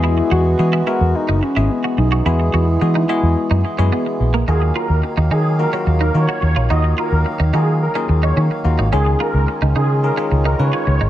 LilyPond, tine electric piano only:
\new Staff \with { instrumentName = "Tine electric piano" } { \time 4/4 \key ees \minor \tempo 4 = 108 <gis b e' fis' gis'>8. r16 <gis b e' fis' gis'>16 r16 <gis b e' fis' bes'>4 r16 <gis b e' fis' gis'>4 r16 | <gis b e' fis' gis'>8. r16 <gis b e' fis' gis'>16 r16 <gis b e' fis' gis'>4 r16 <gis b e' fis' gis'>4 r16 | <bes ees' f' ges'>4. r8 <bes ees' f' ges'>16 <bes ees' f' ges'>8 r16 <bes ees' f' ges'>8. r16 | <bes ees' f' ges'>4 r8 <bes ees' f' ges'>8 r16 <bes ees' f' aes'>4 r16 <bes ees' f' ges'>16 r16 |
<des' ees' f' aes'>4. r8 <des' ees' f' aes'>16 <des' ees' f' aes'>8 r16 <des' ees' f' ces''>8. r16 | }